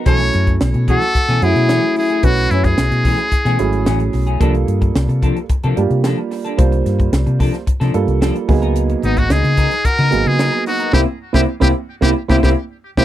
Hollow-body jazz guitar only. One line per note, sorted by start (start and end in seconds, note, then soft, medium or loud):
0.07 0.57 A4 medium
0.90 1.39 F#4 medium
1.45 1.97 E4 medium
1.99 2.26 E4 medium
2.26 2.52 C#4 medium
2.53 2.66 C#4 medium
2.66 4.15 E4 medium
9.05 9.18 B3 medium
9.18 9.30 D#4 medium
9.31 9.86 D#4 medium
9.86 10.26 F#4 medium
10.26 10.67 F4 medium
10.68 10.93 D#4 medium
10.93 11.02 C4 medium
10.93 11.03 E4 medium
10.93 11.02 G4 medium
11.34 11.44 C4 medium
11.34 11.43 E4 loud
11.34 11.43 G4 medium
11.62 11.71 C4 medium
11.62 11.71 E4 medium
11.62 11.71 G4 medium
12.03 12.12 C4 medium
12.03 12.12 E4 medium
12.03 12.12 G4 medium
12.30 12.39 C4 medium
12.30 12.39 E4 medium
12.30 12.39 G4 medium
12.44 12.52 C4 medium
12.44 12.53 E4 medium
12.44 12.52 G4 medium
12.98 13.05 C4 medium
12.98 13.05 E4 medium
12.98 13.05 G4 medium